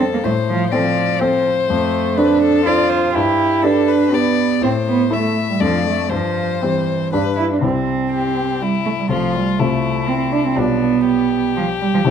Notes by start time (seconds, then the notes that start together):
Already playing: F2 C4 A4 C5
0.14 A#3
0.24 A2 A3 C5
0.49 F3
0.71 F3 C4 A4 C5 D5
1.19 C4 A4 C5
1.69 F2 A3
2.17 D4 A4 B4 C5
2.42 A4
2.66 D4 F4 A4 C5 D5
2.89 C5
3.14 G2 E4 G4
3.62 D4 G4 A4 B4
3.88 B4
4.12 B3 D4 G4 B4 D5
4.61 A2 C4 C5
4.88 B3
5.10 A3 E4 A4 E5
5.49 G3
5.60 F2 F3 A3 D4 A4 D5
5.87 A3
6.10 G2 F3 C5
6.62 E3 G3 C4 C5
7.12 G2 G3 D4 B4
7.36 E4
7.51 D4
7.61 C2 G3 C4 E4 C5
8.11 G4
8.60 G3 E4
8.86 A3
8.99 G3
9.09 C2 F3 A3 F4 C5
9.35 G3
9.58 C2 A3 E4 F4 C5
10.08 C4
10.32 D4
10.46 C4
10.56 B1 G3 B3 D4 F4 D5
11.07 G4
11.56 F3
11.81 G3
11.94 F3
12.05 C2 E3 G3 E4 C5